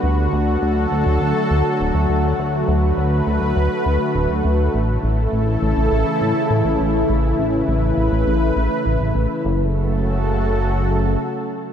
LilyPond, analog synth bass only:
\new Staff \with { instrumentName = "Analog synth bass" } { \clef bass \time 4/4 \key fis \minor \tempo 4 = 102 d,8 d,8 d,8 d,16 d,16 d,16 r16 d,16 r16 d,,16 d,16 d,8 | d,8 d,8 d,8 d,16 d,16 d,16 r16 d,16 r16 d,,16 d,16 d,8 | a,,8 a,,8 a,,8 a,,16 a,,16 a,,16 r16 a,,16 r16 a,16 a,,16 a,,8 | a,,8 a,,8 a,,8 a,,16 a,,16 a,,8 a,,16 r16 a,,16 a,,16 a,,16 r16 |
fis,,2. r4 | }